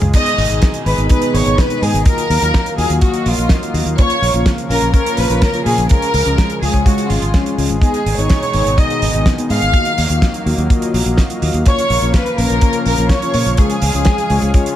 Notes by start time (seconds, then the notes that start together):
Already playing: C#3 F3 G#3 F4 G#4
0.02 C#2, closed hi-hat, mid tom
0.14 B2 D#3 B3 D#4 G#4 D#5, kick, closed hi-hat, crash
0.26 closed hi-hat
0.38 G#1, open hi-hat
0.50 G#1 B3 D#4 G#4 D#5, closed hi-hat
0.62 kick, snare, closed hi-hat
0.74 closed hi-hat
0.86 G#1 B3 D#4 G#4 B4 D#5, open hi-hat
0.98 G#1, closed hi-hat
1.09 B3 D#4 G#4 B4 D#5, kick, closed hi-hat
1.22 closed hi-hat
1.34 G#1 C#5, open hi-hat
1.46 G#1 B3 D#4 G#4 D#5, closed hi-hat
1.58 B4, kick, snare, closed hi-hat
1.70 B3 D#4 G#4 D#5, closed hi-hat
1.82 G#2 G#4, open hi-hat
1.94 G#1, closed hi-hat
2.05 F#3 A#3 F4 F#4 A#4 D#5 F5, kick, closed hi-hat
2.18 closed hi-hat
2.30 D#2, open hi-hat
2.42 D#2 A#3 F4 F#4 D#5, closed hi-hat
2.54 kick, snare, closed hi-hat
2.66 closed hi-hat
2.78 D#2 A#3 F4 F#4 G#4 D#5, open hi-hat
2.90 D#2, closed hi-hat
3.01 A#3 F4 F#4 D#5, kick, closed hi-hat
3.14 closed hi-hat
3.26 A#1 F4, open hi-hat
3.38 A#1 A#3 F4 F#4 D#5, closed hi-hat
3.49 kick, snare, closed hi-hat
3.62 A#3 F4 F#4 D#5, closed hi-hat
3.74 D#2, open hi-hat
3.86 D#2, closed hi-hat
3.98 C#3 F3 A#3 C#4 F4 A#4 C#5, kick, closed hi-hat
4.10 closed hi-hat
4.22 A#1, open hi-hat
4.34 A#1 A#3 C#4 F4 C#5, closed hi-hat
4.46 kick, snare, closed hi-hat
4.58 closed hi-hat
4.70 A#1 A#3 C#4 F4 A#4 C#5, open hi-hat
4.82 A#1, closed hi-hat
4.94 A#3 C#4 F4 A#4 C#5, kick, closed hi-hat
5.06 closed hi-hat
5.17 A#1 B4, open hi-hat
5.30 A#1 A#3 C#4 F4 C#5, closed hi-hat
5.42 A#4, kick, snare, closed hi-hat
5.54 A#3 C#4 F4 C#5, closed hi-hat
5.66 A#2 G#4, open hi-hat
5.78 A#1, closed hi-hat
5.89 G#3 C#4 F4 G#4 A#4 C#5, kick, closed hi-hat
6.02 closed hi-hat
6.14 C#2, open hi-hat
6.25 C#2 G#3 C#4 F4 C#5, closed hi-hat
6.38 kick, snare, closed hi-hat
6.50 closed hi-hat
6.62 C#2 G#3 C#4 F4 G#4 C#5, open hi-hat
6.74 C#2, kick, closed hi-hat
6.86 G#3 C#4 F4 F#4 C#5, kick, closed hi-hat
6.98 closed hi-hat
7.10 G#1 F4, open hi-hat
7.22 G#1, closed hi-hat
7.34 G#3 C#4 F4 C#5, kick, snare, closed hi-hat
7.46 closed hi-hat
7.58 C#2 G#3 C#4 F4 C#5, open hi-hat
7.69 G#1, closed hi-hat
7.82 B2 D#3 B3 D#4 G#4 D#5, kick, closed hi-hat
7.94 closed hi-hat
8.06 G#1, open hi-hat
8.18 G#1 B3 D#4 G#4 C#5 D#5, closed hi-hat
8.30 kick, snare, closed hi-hat
8.43 closed hi-hat
8.53 G#1 B3 D#4 G#4 D#5, open hi-hat
8.66 G#1, closed hi-hat
8.78 B3 D#4 G#4 D#5, kick, closed hi-hat
8.90 closed hi-hat
9.02 G#1, open hi-hat
9.13 G#1 B3 D#4 G#4 D#5, closed hi-hat
9.26 kick, snare, closed hi-hat
9.38 B3 D#4 G#4 D#5, closed hi-hat
9.50 G#2 F5, open hi-hat
9.62 G#1, closed hi-hat
9.74 F#3 A#3 F4 F#4 D#5 F5, kick, closed hi-hat
9.85 closed hi-hat
9.98 D#2, open hi-hat
10.10 D#2 A#3 F4 F#4 D#5, closed hi-hat
10.22 kick, snare, closed hi-hat
10.34 closed hi-hat
10.46 D#2 A#3 F4 F#4 D#5, open hi-hat
10.58 D#2, closed hi-hat
10.70 A#3 F4 F#4 D#5, kick, closed hi-hat
10.82 closed hi-hat
10.94 A#1, open hi-hat
11.06 A#1 A#3 F4 F#4 D#5, closed hi-hat
11.17 kick, snare, closed hi-hat
11.30 A#3 F4 F#4 D#5, closed hi-hat
11.42 D#2, open hi-hat
11.54 D#2, closed hi-hat
11.66 C#3 F3 A#3 C#4 F4 A#4 C#5, kick, closed hi-hat
11.79 closed hi-hat
11.90 A#1, open hi-hat
12.02 A#1 A#3 C#4 F4 C#5, closed hi-hat
12.14 B4, kick, snare, closed hi-hat
12.26 closed hi-hat
12.38 A#1 A#3 C#4 F4 A#4 C#5, open hi-hat
12.50 A#1, closed hi-hat
12.61 A#3 C#4 F4 C#5, kick, closed hi-hat
12.73 closed hi-hat
12.86 A#1 A#4, open hi-hat
12.98 A#1 A#3 C#4 F4 C#5, closed hi-hat
13.09 C#5, kick, snare, closed hi-hat
13.22 A#3 C#4 F4 C#5, closed hi-hat
13.34 A#2, open hi-hat
13.46 A#1, closed hi-hat
13.57 G#3 C#4 F4 G#4 C#5, kick, closed hi-hat
13.70 closed hi-hat
13.82 C#2, open hi-hat
13.94 C#2 G#3 C#4 F4 C#5, closed hi-hat
14.05 kick, snare, closed hi-hat
14.18 closed hi-hat
14.30 C#2 G#3 C#4 F4 C#5, open hi-hat
14.42 C#2, closed hi-hat
14.54 G#3 C#4 F4 C#5, kick, closed hi-hat
14.66 closed hi-hat